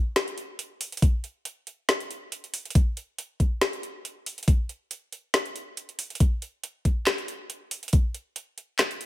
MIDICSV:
0, 0, Header, 1, 2, 480
1, 0, Start_track
1, 0, Tempo, 431655
1, 1140, Time_signature, 4, 2, 24, 8
1, 10074, End_track
2, 0, Start_track
2, 0, Title_t, "Drums"
2, 178, Note_on_c, 9, 38, 116
2, 178, Note_on_c, 9, 42, 83
2, 290, Note_off_c, 9, 38, 0
2, 290, Note_off_c, 9, 42, 0
2, 308, Note_on_c, 9, 42, 39
2, 418, Note_off_c, 9, 42, 0
2, 418, Note_on_c, 9, 42, 59
2, 529, Note_off_c, 9, 42, 0
2, 656, Note_on_c, 9, 42, 85
2, 767, Note_off_c, 9, 42, 0
2, 897, Note_on_c, 9, 46, 96
2, 1009, Note_off_c, 9, 46, 0
2, 1027, Note_on_c, 9, 42, 54
2, 1081, Note_off_c, 9, 42, 0
2, 1081, Note_on_c, 9, 42, 69
2, 1138, Note_off_c, 9, 42, 0
2, 1138, Note_on_c, 9, 36, 124
2, 1138, Note_on_c, 9, 42, 82
2, 1249, Note_off_c, 9, 36, 0
2, 1249, Note_off_c, 9, 42, 0
2, 1377, Note_on_c, 9, 42, 51
2, 1489, Note_off_c, 9, 42, 0
2, 1616, Note_on_c, 9, 42, 80
2, 1727, Note_off_c, 9, 42, 0
2, 1856, Note_on_c, 9, 42, 55
2, 1967, Note_off_c, 9, 42, 0
2, 2099, Note_on_c, 9, 38, 126
2, 2099, Note_on_c, 9, 42, 80
2, 2210, Note_off_c, 9, 38, 0
2, 2210, Note_off_c, 9, 42, 0
2, 2229, Note_on_c, 9, 42, 38
2, 2340, Note_off_c, 9, 42, 0
2, 2342, Note_on_c, 9, 42, 55
2, 2453, Note_off_c, 9, 42, 0
2, 2580, Note_on_c, 9, 42, 81
2, 2692, Note_off_c, 9, 42, 0
2, 2712, Note_on_c, 9, 42, 37
2, 2820, Note_on_c, 9, 46, 92
2, 2823, Note_off_c, 9, 42, 0
2, 2931, Note_off_c, 9, 46, 0
2, 2952, Note_on_c, 9, 42, 52
2, 3007, Note_off_c, 9, 42, 0
2, 3007, Note_on_c, 9, 42, 65
2, 3061, Note_off_c, 9, 42, 0
2, 3061, Note_on_c, 9, 36, 127
2, 3061, Note_on_c, 9, 42, 76
2, 3172, Note_off_c, 9, 36, 0
2, 3172, Note_off_c, 9, 42, 0
2, 3302, Note_on_c, 9, 42, 50
2, 3413, Note_off_c, 9, 42, 0
2, 3541, Note_on_c, 9, 42, 77
2, 3653, Note_off_c, 9, 42, 0
2, 3780, Note_on_c, 9, 36, 67
2, 3782, Note_on_c, 9, 42, 52
2, 3891, Note_off_c, 9, 36, 0
2, 3893, Note_off_c, 9, 42, 0
2, 4019, Note_on_c, 9, 38, 122
2, 4019, Note_on_c, 9, 42, 77
2, 4131, Note_off_c, 9, 38, 0
2, 4131, Note_off_c, 9, 42, 0
2, 4151, Note_on_c, 9, 42, 35
2, 4262, Note_off_c, 9, 42, 0
2, 4262, Note_on_c, 9, 42, 51
2, 4373, Note_off_c, 9, 42, 0
2, 4503, Note_on_c, 9, 42, 77
2, 4615, Note_off_c, 9, 42, 0
2, 4741, Note_on_c, 9, 46, 88
2, 4853, Note_off_c, 9, 46, 0
2, 4869, Note_on_c, 9, 42, 49
2, 4923, Note_off_c, 9, 42, 0
2, 4923, Note_on_c, 9, 42, 61
2, 4979, Note_off_c, 9, 42, 0
2, 4979, Note_on_c, 9, 36, 122
2, 4979, Note_on_c, 9, 42, 74
2, 5090, Note_off_c, 9, 36, 0
2, 5090, Note_off_c, 9, 42, 0
2, 5219, Note_on_c, 9, 42, 50
2, 5330, Note_off_c, 9, 42, 0
2, 5458, Note_on_c, 9, 42, 77
2, 5569, Note_off_c, 9, 42, 0
2, 5699, Note_on_c, 9, 42, 49
2, 5810, Note_off_c, 9, 42, 0
2, 5937, Note_on_c, 9, 38, 126
2, 5937, Note_on_c, 9, 42, 76
2, 6048, Note_off_c, 9, 38, 0
2, 6048, Note_off_c, 9, 42, 0
2, 6067, Note_on_c, 9, 42, 35
2, 6178, Note_off_c, 9, 42, 0
2, 6178, Note_on_c, 9, 42, 52
2, 6289, Note_off_c, 9, 42, 0
2, 6418, Note_on_c, 9, 42, 75
2, 6530, Note_off_c, 9, 42, 0
2, 6548, Note_on_c, 9, 42, 38
2, 6658, Note_on_c, 9, 46, 93
2, 6660, Note_off_c, 9, 42, 0
2, 6769, Note_off_c, 9, 46, 0
2, 6787, Note_on_c, 9, 42, 49
2, 6841, Note_off_c, 9, 42, 0
2, 6841, Note_on_c, 9, 42, 64
2, 6898, Note_off_c, 9, 42, 0
2, 6898, Note_on_c, 9, 36, 113
2, 6898, Note_on_c, 9, 42, 76
2, 7009, Note_off_c, 9, 42, 0
2, 7010, Note_off_c, 9, 36, 0
2, 7140, Note_on_c, 9, 42, 49
2, 7251, Note_off_c, 9, 42, 0
2, 7378, Note_on_c, 9, 42, 80
2, 7489, Note_off_c, 9, 42, 0
2, 7618, Note_on_c, 9, 36, 64
2, 7620, Note_on_c, 9, 42, 53
2, 7729, Note_off_c, 9, 36, 0
2, 7731, Note_off_c, 9, 42, 0
2, 7859, Note_on_c, 9, 38, 121
2, 7859, Note_on_c, 9, 39, 81
2, 7859, Note_on_c, 9, 42, 74
2, 7970, Note_off_c, 9, 38, 0
2, 7970, Note_off_c, 9, 39, 0
2, 7970, Note_off_c, 9, 42, 0
2, 7987, Note_on_c, 9, 42, 35
2, 8098, Note_off_c, 9, 42, 0
2, 8098, Note_on_c, 9, 42, 54
2, 8209, Note_off_c, 9, 42, 0
2, 8337, Note_on_c, 9, 42, 75
2, 8448, Note_off_c, 9, 42, 0
2, 8576, Note_on_c, 9, 46, 92
2, 8687, Note_off_c, 9, 46, 0
2, 8705, Note_on_c, 9, 42, 50
2, 8762, Note_off_c, 9, 42, 0
2, 8762, Note_on_c, 9, 42, 64
2, 8816, Note_off_c, 9, 42, 0
2, 8816, Note_on_c, 9, 42, 78
2, 8819, Note_on_c, 9, 36, 117
2, 8927, Note_off_c, 9, 42, 0
2, 8930, Note_off_c, 9, 36, 0
2, 9057, Note_on_c, 9, 42, 53
2, 9168, Note_off_c, 9, 42, 0
2, 9295, Note_on_c, 9, 42, 78
2, 9407, Note_off_c, 9, 42, 0
2, 9537, Note_on_c, 9, 42, 52
2, 9648, Note_off_c, 9, 42, 0
2, 9775, Note_on_c, 9, 38, 108
2, 9775, Note_on_c, 9, 39, 84
2, 9775, Note_on_c, 9, 42, 77
2, 9886, Note_off_c, 9, 38, 0
2, 9886, Note_off_c, 9, 39, 0
2, 9886, Note_off_c, 9, 42, 0
2, 9906, Note_on_c, 9, 42, 35
2, 10016, Note_off_c, 9, 42, 0
2, 10016, Note_on_c, 9, 42, 54
2, 10074, Note_off_c, 9, 42, 0
2, 10074, End_track
0, 0, End_of_file